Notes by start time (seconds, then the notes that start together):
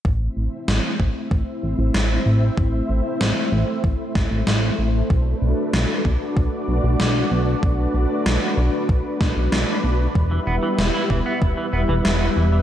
0.05 A1 A3 C4 E4 C5 E5, kick
0.36 A1
0.68 A1, snare
1.00 A1, kick
1.31 A1, kick
1.63 A1
1.79 A1
1.94 A1, snare
2.26 A1
2.57 A1, kick
2.89 A1
3.21 A1, snare
3.52 A1
3.84 A1, kick
4.15 A1, kick, snare
4.31 A1
4.47 A1, snare
4.79 A1
5.10 B1 D4 F#4 B4 D5, kick
5.42 B1
5.73 B1, snare
6.05 B1, kick
6.37 B1, kick
6.68 B1
6.84 B1
7.00 B1, snare
7.31 B1
7.63 B1, kick
7.94 B1
8.26 B1, snare
8.57 B1
8.89 B1, kick
9.21 B1, kick, snare
9.36 B1
9.52 B1, snare
9.84 B1
10.15 E1 G3 B3 E4 E5, kick
10.31 E3
10.47 E1 B3
10.63 E3
10.78 E1 E3, snare
10.94 E4
11.10 E1 E3, kick
11.26 B3
11.42 E1, kick
11.57 E3
11.73 E1 B3
11.89 E1 E3
12.05 E1 E3, snare
12.21 B3
12.36 E1 E3
12.52 E3